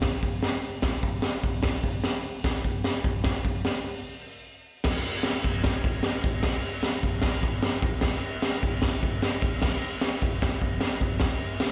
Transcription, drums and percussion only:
0.02 kick, snare, open hi-hat, shaker
0.23 kick, shaker
0.43 snare, open hi-hat, shaker
0.65 shaker
0.82 kick, snare, open hi-hat, shaker
1.03 kick, shaker
1.22 snare, open hi-hat, shaker
1.44 kick, shaker
1.63 kick, snare, open hi-hat, shaker
1.84 kick, shaker
2.04 snare, open hi-hat, shaker
2.25 shaker
2.44 kick, snare, open hi-hat, shaker
2.64 kick, shaker
2.84 snare, open hi-hat, shaker
3.04 kick, shaker
3.24 kick, snare, open hi-hat, shaker
3.45 kick, shaker
3.65 snare, open hi-hat, shaker
3.86 shaker
4.84 kick, snare, crash, shaker
5.05 shaker
5.16 shaker
5.23 snare, crash, shaker
5.44 kick, shaker
5.64 kick, snare, crash, shaker
5.84 kick, shaker
5.95 shaker
6.03 snare, crash, shaker
6.15 shaker
6.24 kick, shaker
6.34 shaker
6.43 kick, snare, crash, shaker
6.55 shaker
6.64 shaker
6.83 snare, crash, shaker
7.03 kick, shaker
7.22 kick, snare, crash, shaker
7.43 kick, shaker
7.55 shaker
7.62 snare, crash, shaker
7.74 shaker
7.82 kick, shaker
7.93 shaker
8.01 kick, snare, crash, shaker
8.14 shaker
8.24 shaker
8.34 shaker
8.42 snare, crash, shaker
8.63 kick, shaker
8.82 kick, snare, crash, shaker
9.03 kick, shaker
9.15 shaker
9.22 snare, crash, shaker
9.42 kick, shaker
9.55 shaker
9.62 kick, snare, crash, shaker
9.74 shaker
9.84 shaker
10.01 snare, crash, shaker
10.22 kick, shaker
10.34 shaker
10.42 kick, snare, crash, shaker
10.62 kick, shaker
10.81 snare, crash, shaker
11.01 kick, shaker
11.14 shaker
11.20 kick, snare, crash, shaker
11.34 shaker
11.43 shaker
11.53 shaker
11.60 snare, crash, shaker

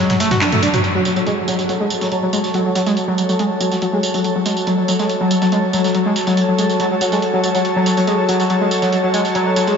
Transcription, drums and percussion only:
0.10 snare, closed hi-hat, mid tom
0.20 snare, closed hi-hat, open hi-hat, tambourine
0.31 snare, closed hi-hat, mid tom, tambourine
0.41 snare, clap, closed hi-hat, high tom, tambourine
0.52 closed hi-hat, mid tom, high tom
0.63 closed hi-hat, open hi-hat, tambourine
0.74 closed hi-hat, mid tom, tambourine
0.84 closed hi-hat, tambourine
1.05 snare, closed hi-hat, tambourine
1.16 tambourine
1.27 closed hi-hat, tambourine
1.48 closed hi-hat, tambourine
1.59 snare, tambourine
1.69 closed hi-hat, tambourine
1.90 closed hi-hat, tambourine
2.01 snare, tambourine
2.12 closed hi-hat, tambourine
2.33 closed hi-hat, tambourine
2.44 snare, tambourine
2.54 closed hi-hat, tambourine
2.75 snare, closed hi-hat, tambourine
2.86 snare, tambourine
2.97 closed hi-hat, tambourine
3.18 closed hi-hat, tambourine
3.29 tambourine
3.39 closed hi-hat, tambourine
3.61 closed hi-hat, tambourine
3.72 snare, tambourine
3.82 closed hi-hat, tambourine
4.03 closed hi-hat, tambourine
4.14 closed hi-hat, tambourine
4.24 closed hi-hat, tambourine
4.46 snare, closed hi-hat, tambourine
4.57 tambourine
4.67 closed hi-hat, tambourine
4.88 closed hi-hat, tambourine
4.99 snare, tambourine
5.09 closed hi-hat, tambourine
5.31 closed hi-hat, tambourine
5.42 snare, tambourine
5.52 closed hi-hat, tambourine
5.73 closed hi-hat, tambourine
5.84 snare, tambourine
5.95 closed hi-hat, tambourine
6.16 snare, closed hi-hat, tambourine
6.27 snare, tambourine
6.37 closed hi-hat, tambourine
6.58 closed hi-hat, tambourine
6.69 tambourine
6.80 closed hi-hat, tambourine
7.01 closed hi-hat, tambourine
7.12 snare, tambourine
7.22 closed hi-hat, tambourine
7.44 closed hi-hat, tambourine
7.55 closed hi-hat, tambourine
7.65 closed hi-hat, tambourine
7.86 snare, closed hi-hat, tambourine
7.97 tambourine
8.07 closed hi-hat, tambourine
8.29 closed hi-hat, tambourine
8.40 snare, tambourine
8.50 closed hi-hat, tambourine
8.71 closed hi-hat, tambourine
8.82 snare, tambourine
8.92 closed hi-hat, tambourine
9.14 closed hi-hat, tambourine
9.25 snare, tambourine
9.35 closed hi-hat, tambourine
9.56 snare, closed hi-hat, tambourine
9.67 snare, tambourine

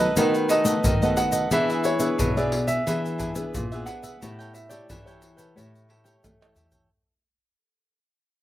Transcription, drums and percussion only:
0.16 pandeiro, shaker, surdo
0.34 pandeiro, shaker
0.49 pandeiro, shaker
0.65 pandeiro, shaker
0.84 pandeiro, shaker, surdo
1.02 pandeiro, shaker
1.17 pandeiro, shaker
1.32 pandeiro, shaker
1.51 pandeiro, shaker, surdo
1.70 pandeiro, shaker
1.84 pandeiro, shaker
2.00 pandeiro, shaker
2.19 pandeiro, shaker, surdo
2.37 pandeiro, shaker
2.52 pandeiro
2.68 pandeiro, shaker
2.87 pandeiro, shaker, surdo
3.06 pandeiro, shaker
3.19 pandeiro, shaker, surdo
3.35 pandeiro, shaker
3.54 pandeiro, shaker, surdo
3.72 pandeiro, shaker
3.87 pandeiro, shaker
4.03 pandeiro, shaker
4.22 pandeiro, shaker, surdo
4.40 pandeiro, shaker
4.55 pandeiro, shaker
4.71 pandeiro, shaker
4.90 pandeiro, shaker, surdo
5.07 pandeiro, shaker
5.22 pandeiro, shaker
5.38 pandeiro, shaker
5.58 pandeiro, shaker, surdo
5.75 pandeiro, shaker
5.90 pandeiro
6.06 pandeiro, shaker
6.24 pandeiro, tamborim, shaker, surdo
6.42 pandeiro, tamborim, shaker
6.56 surdo, pandeiro, shaker
6.72 pandeiro, shaker, surdo

